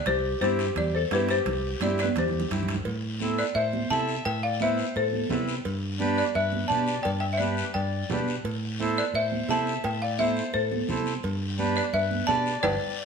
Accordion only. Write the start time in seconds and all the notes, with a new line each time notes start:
0.41 C4 E4 G4
1.11 C4 E4 G4
1.81 C4 E4 G4
2.51 C4 E4 G4
3.21 C4 E4 A4
3.90 C4 E4 A4
4.61 C4 E4 B4
5.30 C4 E4 B4
5.99 D4 G4 B4
6.71 D4 G4 B4
7.40 D4 G4 B4
8.11 D4 G4 B4
8.80 E4 A4 C5
9.49 E4 A4 C5
10.19 E4 A4 C5
10.89 E4 A4 C5
11.58 D4 G4 B4
12.28 D4 G4 B4
12.63 D4 G4 B4